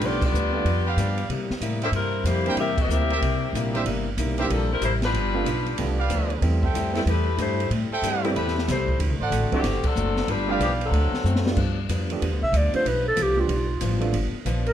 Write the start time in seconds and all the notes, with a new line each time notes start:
Already playing: G3 A3 B3 D4 G4
0.00 B1 G2 F3 B3, ride
0.04 B3 D4 F4 G4 D5
0.22 B3 F4 G4 D5, kick, crash
0.33 D2 G2 F3 B3 D4, hi-hat pedal
0.52 G3 A3 B3 D4 F4
0.65 F2 G2 F3 B3 D4, ride
0.86 G4 B4 D5 F5
0.97 G2 F3 B3 D4, hi-hat pedal, ride
1.18 ride
1.29 C3 G3 A#3 E4, ride
1.50 muted upright bass stroke, snare
1.61 A2 C3 G3 A#3 E4, hi-hat pedal, ride
1.81 F3 A#3 D4 G4 A4 A#4 C5 E5, ride
1.92 G2 C3 G3 C4 E4 A#4, ride
1.96 A#3 E4
2.24 F2 C3 G3 A#3 E4 G4 C5, hi-hat pedal, ride
2.45 G3 A#3 C4 D4 E4 G4 A#4 C5 G5, ride
2.56 E2 C3 G3 A#3 C4 G4 A#4 E5, ride
2.60 E4
2.78 C4 G4 E5, kick, crash
2.82 A#4
2.88 D2 C3 G3 A#3 E4, hi-hat pedal
3.10 G4 A#4 C5 E5, ride
3.21 C2 C3 G3 A#3 E4, ride
3.53 A#1 C3 G3 A#3 E4, hi-hat pedal, ride
3.74 G3 A#3 C4 D4 E4 G4 A#4 C5 E5, ride
3.85 G1 C3 G3 A#3 E4, ride
4.17 B1 C3 G3 A#3 E4, hi-hat pedal, ride
4.38 G3 A#3 C4 D4 E4 G4 A#4 C5 E5, ride
4.42 E3 A#3 C4 G4
4.49 A#1 C3 F3 G3 A#3 D4 E4 A4, ride
4.72 G3 C4 E4 A#4
4.81 A1 C3 G3 A#3 E4 G4 C5, hi-hat pedal, ride
5.02 G3 D4 F4 B4, snare, ride
5.12 G1 G2 F3 B3 D4, ride
5.33 G3 A3 B3 D4 F4
5.45 B1 G2 F3 B3 D4, hi-hat pedal, ride
5.66 ride
5.77 C2 G2 F3 G3 A3 B3 D4 F4, ride
5.98 G4 B4 D5 F5
6.09 D2 G2 F3 B3 D4, hi-hat pedal, ride
6.30 ride
6.41 E2 A2 G3 A3 B3 C4 E4, ride
6.62 A4 C5 E5 G5, kick
6.73 F2 A2 G3 C4 E4, hi-hat pedal, ride
6.94 G3 A3 B3 C4 E4 A4, snare, ride
7.06 E2 A2 G3 A3 C4 E4 G4 B4, ride
7.37 G2 A2 G3 A3 C4 E4 G4 C5, hi-hat pedal, ride
7.60 ride
7.69 A2 G3 C4 E4, ride
7.91 A4 C5 E5 G5, muted upright bass stroke
8.02 G2 A2 G3 C4 E4, hi-hat pedal, ride
8.24 G3 A3 B3 C4 E4 A4, ride
8.35 E2 A2 G3 A3 C4 E4 G4 B4, ride
8.48 snare
8.58 snare
8.67 C2 A2 G3 A3 C4 E4 G4 C5, snare, hi-hat pedal, ride
8.88 kick
8.99 D2 D3 A3 C4 F#4, ride
9.09 C2
9.20 A1 A4 C5 D5 F#5
9.30 A1 D3 A3 C4 F#4, hi-hat pedal, ride
9.41 F#1
9.52 D1 D3 F#3 A3 C4 D4 E4 G4, kick, ride
9.63 G1 D3 A3 C4 F#4, snare, ride
9.84 F#3 C4 D4 A4, muted upright bass stroke, kick, crash
9.96 F#1 D3 A3 C4 F#4, hi-hat pedal
10.17 snare
10.28 G1 G2 F3 G3 B3 D4 F4 B4, ride
10.47 G3 A3 B3 D4 F4 G4 B4 D5 F5
10.59 B1 G2 F3 B3 D4 G4, hi-hat pedal, ride
10.81 F#3 C4 D4 A4, ride
10.91 D2 D3 A3 C4 F#4, ride
11.12 muted upright bass stroke, snare
11.24 F#2 D3 A3 C4 F#4, hi-hat pedal
11.36 snare
11.45 G3 A3 B3 D4 F4, snare
11.56 G2 F3 B3 D4, kick, crash
11.89 F2 G2 F3 B3 D4, hi-hat pedal, ride
12.10 F3 A3 B3 D4 G4, ride
12.20 E2 G2 F3 B3 D4, ride
12.31 D2
12.42 B1 E5
12.52 D2 G2 F3 B3 D4, hi-hat pedal, ride
12.57 D5
12.73 F3 A3 B3 D4 F4 C5, muted upright bass stroke, ride
12.84 B1 G2 F3 B3 D4 B4, ride
13.08 A4
13.15 C2 G2 F3 B3 D4, hi-hat pedal, ride
13.22 G4
13.36 F3 A3 B3 D4 G4
13.40 F4
13.48 B1 G2 F3 B3 D4, ride
13.81 A1 G2 F3 B3 D4, hi-hat pedal, ride
14.00 F3 A3 B3 D4 F4, ride
14.12 G1 G2 F3 B3 D4, ride
14.33 muted upright bass stroke
14.45 A#1 G2 F3 B3 D4, hi-hat pedal, ride
14.66 A#4, ride